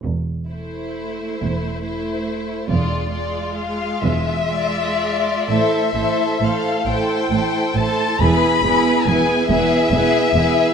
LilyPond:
<<
  \new Staff \with { instrumentName = "Violin section" } { \time 6/8 \key a \minor \tempo 4. = 45 << { r2. | r4 f''8 e''4. | e''4 f''8 g''4 a''8 | b''4 gis''8 e''4. | } \\ { r8 c''4. c''4 | d''8 d''8 r4 d''4 | r2. | r2. | } >> }
  \new Staff \with { instrumentName = "Violin section" } { \time 6/8 \key a \minor r8 e'4. e'4 | f'8 f'4. f'4 | <a' c''>8 <a' c''>8 <a' c''>8 <a' c''>8 <a' c''>8 <a' c''>8 | <gis' b'>8 <gis' b'>8 <gis' b'>8 <gis' b'>8 <gis' b'>8 <gis' b'>8 | }
  \new Staff \with { instrumentName = "Viola section" } { \time 6/8 \key a \minor r8 a4. a4 | gis8 gis4. gis4 | <a e'>8 <a e'>8 <a e'>8 <a e'>8 <a e'>8 <a e'>8 | <b e'>8 <b e'>8 <b e'>8 <b e'>8 <b e'>8 <b e'>8 | }
  \new Staff \with { instrumentName = "Cello section" } { \clef bass \time 6/8 \key a \minor e,4. e,4. | e,4. e,4. | a,8 a,8 a,8 a,8 a,8 a,8 | e,8 e,8 e,8 e,8 e,8 e,8 | }
  \new Staff \with { instrumentName = "Double bass section" } { \clef bass \time 6/8 \key a \minor e,,4. e,,4. | e,,4. e,,4. | a,,8 a,,8 a,,8 a,,8 a,,8 a,,8 | e,,8 e,,8 e,,8 e,,8 e,,8 e,,8 | }
>>